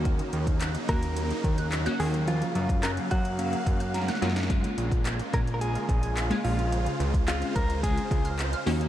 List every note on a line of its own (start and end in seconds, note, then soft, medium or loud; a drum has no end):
0.00 0.21 D#2 loud
0.00 4.46 C#3 medium
0.00 4.46 F#3 medium
0.00 0.66 A#3 medium
0.00 2.25 A#3 medium
0.00 0.66 C#4 medium
0.00 0.66 D#4 medium
0.00 2.25 D#4 medium
0.00 0.67 F#4 loud
0.05 0.14 D#3 loud
0.05 kick loud
0.05 closed hi-hat medium
0.19 0.27 D#3 medium
0.19 closed hi-hat medium
0.33 0.77 D#2 loud
0.33 closed hi-hat medium
0.47 kick loud
0.47 closed hi-hat medium
0.61 0.69 F#6 loud
0.61 clap loud
0.61 closed hi-hat loud
0.75 closed hi-hat medium
0.89 1.33 D#2 loud
0.89 1.35 A#3 medium
0.89 1.35 C#4 medium
0.89 1.35 D#4 medium
0.89 1.35 F#4 medium
0.89 1.68 A#4 loud
0.89 0.97 F#6 medium
0.89 kick loud
0.89 closed hi-hat medium
1.03 closed hi-hat soft
1.17 closed hi-hat medium
1.31 closed hi-hat medium
1.44 1.88 D#2 loud
1.44 kick loud
1.44 closed hi-hat medium
1.58 1.66 F#6 medium
1.58 closed hi-hat medium
1.72 clap loud
1.72 closed hi-hat medium
1.86 2.25 A#3 medium
1.86 2.25 C#4 medium
1.86 2.25 D#4 medium
1.86 2.26 F#4 loud
1.86 1.94 F#6 medium
1.86 closed hi-hat medium
2.00 2.44 D#2 loud
2.00 2.08 C#4 medium
2.00 2.07 G#4 medium
2.00 open hi-hat medium
2.14 closed hi-hat medium
2.28 2.36 F3 loud
2.28 4.48 A#3 medium
2.28 2.85 F4 loud
2.28 4.48 F5 medium
2.28 closed hi-hat medium
2.42 2.50 F3 medium
2.42 closed hi-hat medium
2.55 2.99 F#2 loud
2.55 closed hi-hat medium
2.69 2.76 C#4 medium
2.69 2.76 F4 medium
2.69 kick medium
2.69 closed hi-hat medium
2.83 3.09 F#3 medium
2.83 3.09 A#3 medium
2.83 3.09 C#4 medium
2.83 3.10 F4 medium
2.83 2.91 A#4 loud
2.83 2.91 F#6 medium
2.83 clap loud
2.83 closed hi-hat loud
2.97 closed hi-hat soft
3.11 3.55 F#2 loud
3.11 4.18 F#4 medium
3.11 3.19 F#6 medium
3.11 kick loud
3.11 closed hi-hat medium
3.25 closed hi-hat soft
3.38 3.78 F#3 medium
3.38 3.78 A#3 medium
3.38 3.78 C#4 medium
3.38 3.78 F5 medium
3.38 closed hi-hat loud
3.53 closed hi-hat medium
3.66 4.10 F#2 loud
3.66 kick loud
3.66 closed hi-hat medium
3.80 3.89 F#6 medium
3.80 closed hi-hat medium
3.94 4.20 A#5 medium
3.94 snare medium
3.94 closed hi-hat medium
4.01 snare medium
4.08 4.17 F#6 medium
4.08 snare medium
4.08 closed hi-hat medium
4.15 snare medium
4.22 4.66 F#2 loud
4.22 4.35 F#3 medium
4.22 4.35 A#3 medium
4.22 4.30 A#3 medium
4.22 4.35 C#4 medium
4.22 4.35 F4 loud
4.22 4.48 F#5 medium
4.22 snare medium
4.22 closed hi-hat medium
4.29 snare medium
4.36 snare loud
4.36 closed hi-hat soft
4.43 snare loud
4.49 8.63 C#3 medium
4.49 4.58 C#3 medium
4.49 4.89 G#3 loud
4.49 8.63 G#3 medium
4.49 4.89 A#3 medium
4.49 6.70 A#3 medium
4.49 4.89 C#4 medium
4.49 4.89 F4 loud
4.49 8.63 F4 medium
4.49 kick loud
4.49 closed hi-hat medium
4.64 4.72 C#3 medium
4.64 closed hi-hat medium
4.78 5.22 A#1 loud
4.78 closed hi-hat medium
4.92 kick medium
4.92 closed hi-hat medium
5.05 5.14 G#6 medium
5.05 clap loud
5.05 closed hi-hat loud
5.19 closed hi-hat soft
5.33 5.77 A#1 loud
5.33 5.79 G#3 medium
5.33 5.79 A#3 medium
5.33 5.79 C#4 medium
5.33 5.79 F4 medium
5.33 5.39 A#4 loud
5.33 5.41 G#6 medium
5.33 kick medium
5.33 closed hi-hat medium
5.47 closed hi-hat soft
5.54 5.61 A#4 medium
5.61 6.47 G#4 loud
5.61 closed hi-hat loud
5.75 closed hi-hat medium
5.89 6.33 A#1 loud
5.89 kick loud
5.89 closed hi-hat medium
6.03 6.11 G#6 medium
6.03 closed hi-hat medium
6.17 clap loud
6.17 closed hi-hat loud
6.30 6.70 G#3 medium
6.30 6.70 A#3 medium
6.30 6.70 C#4 medium
6.30 6.70 F4 medium
6.30 6.39 G#6 medium
6.30 closed hi-hat medium
6.44 6.88 A#1 loud
6.44 6.53 A#3 medium
6.44 6.96 F4 medium
6.44 open hi-hat medium
6.59 closed hi-hat medium
6.72 6.80 C#3 loud
6.72 8.65 C5 medium
6.72 closed hi-hat medium
6.86 6.94 C#3 medium
6.86 closed hi-hat medium
7.00 7.44 C#2 loud
7.00 closed hi-hat medium
7.13 7.20 C#4 medium
7.13 7.20 F4 medium
7.13 kick loud
7.13 closed hi-hat medium
7.27 7.54 G#3 medium
7.27 7.54 C4 medium
7.27 7.54 C#4 medium
7.27 7.54 F4 medium
7.27 7.54 G#4 medium
7.27 7.36 F6 medium
7.27 clap loud
7.27 closed hi-hat loud
7.42 closed hi-hat soft
7.56 7.99 C#2 loud
7.56 7.83 A#4 loud
7.56 7.64 F6 medium
7.56 kick medium
7.56 closed hi-hat medium
7.70 closed hi-hat soft
7.83 8.23 G#3 medium
7.83 8.23 C4 medium
7.83 8.23 C#4 medium
7.83 8.23 F4 medium
7.83 8.35 G#4 loud
7.83 kick loud
7.83 closed hi-hat loud
7.98 closed hi-hat medium
8.11 8.55 C#2 loud
8.11 kick loud
8.11 closed hi-hat medium
8.25 8.33 F6 medium
8.25 closed hi-hat medium
8.39 clap loud
8.39 closed hi-hat medium
8.53 8.61 F6 medium
8.53 closed hi-hat medium
8.66 8.88 D#2 loud
8.66 8.88 C#3 medium
8.66 8.88 F#3 medium
8.66 8.88 A#3 loud
8.66 8.88 A#3 medium
8.66 8.88 C#4 medium
8.66 8.75 C#4 medium
8.66 8.88 D#4 medium
8.66 8.88 F#4 loud
8.66 open hi-hat medium
8.81 closed hi-hat medium